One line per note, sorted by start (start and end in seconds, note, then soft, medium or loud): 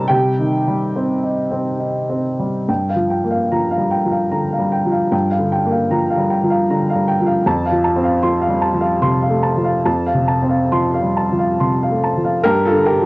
0.00 0.28 G3 medium
0.00 0.13 C4 soft
0.00 0.13 D#4 soft
0.00 0.13 A4 medium
0.00 0.13 A#4 medium
0.00 0.13 A5 medium
0.00 0.13 A#5 medium
0.08 2.64 C3 medium
0.08 2.21 G4 medium
0.08 2.24 G5 medium
0.39 0.84 D#3 soft
0.68 1.13 G3 soft
0.96 1.41 C4 soft
1.23 1.69 D#4 soft
1.51 1.98 C4 soft
1.80 2.27 D#4 soft
2.10 2.57 C4 soft
2.40 2.68 G3 soft
2.69 5.09 G2 soft
2.69 3.02 G5 soft
2.89 3.22 F5 soft
2.96 3.40 F3 soft
3.10 3.43 G5 soft
3.24 3.67 A#3 soft
3.31 3.63 F5 soft
3.52 3.95 F3 soft
3.52 3.84 A#5 soft
3.71 4.04 F5 soft
3.78 4.05 G3 soft
3.91 4.24 G5 soft
4.05 4.49 F3 soft
4.11 4.44 F5 soft
4.31 4.75 D3 soft
4.31 4.64 A#5 soft
4.53 4.85 F5 soft
4.59 5.02 G3 soft
4.72 5.04 G5 soft
4.86 5.28 F3 soft
4.92 5.24 F5 soft
5.12 7.42 G2 soft
5.12 5.44 G5 soft
5.31 5.63 F5 soft
5.38 5.81 D3 soft
5.52 5.84 G5 soft
5.66 6.08 A#3 soft
5.71 6.03 F5 soft
5.91 6.34 F3 soft
5.91 6.23 A#5 soft
6.10 6.43 F5 soft
6.17 6.44 G3 soft
6.30 6.62 G5 soft
6.43 6.85 F3 soft
6.50 6.82 F5 soft
6.70 7.11 D3 soft
6.70 7.01 A#5 soft
6.90 7.20 F5 soft
6.96 7.36 G3 soft
7.08 7.38 G5 soft
7.21 7.46 F3 soft
7.26 7.46 F5 soft
7.46 9.82 F2 medium
7.46 7.77 A5 medium
7.66 7.96 F5 soft
7.72 8.13 F3 soft
7.84 8.15 A5 medium
7.96 8.38 C4 soft
8.04 8.35 F5 soft
8.23 8.65 F3 soft
8.23 8.54 C6 medium
8.42 8.74 F5 soft
8.48 8.76 G3 soft
8.62 8.94 A5 soft
8.74 9.18 F3 soft
8.81 9.14 F5 soft
9.02 9.46 C3 soft
9.02 9.35 C6 medium
9.22 9.56 F5 soft
9.29 9.74 A3 soft
9.43 9.77 A5 soft
9.57 10.03 F3 soft
9.65 9.99 F5 soft
9.86 12.42 F2 soft
9.86 10.21 A5 soft
10.07 10.42 F5 soft
10.14 10.61 C3 soft
10.28 10.64 A5 soft
10.43 10.91 C4 soft
10.50 10.86 F5 soft
10.72 11.20 F3 soft
10.72 11.08 C6 soft
10.94 11.30 F5 soft
11.01 11.31 G3 soft
11.17 11.52 A5 soft
11.32 11.78 F3 soft
11.39 11.73 F5 soft
11.60 12.06 C3 soft
11.60 11.95 C6 soft
11.83 12.17 F5 soft
11.90 12.35 A3 soft
12.04 12.38 A5 soft
12.17 12.45 F3 soft
12.25 12.46 F5 soft
12.44 13.06 G2 medium
12.44 12.64 G4 medium
12.44 12.65 A#4 medium
12.65 12.86 F4 soft
12.65 12.86 A4 medium
12.73 13.06 D3 soft
12.85 13.06 G4 medium
12.85 13.06 A#4 medium
13.01 13.06 F3 soft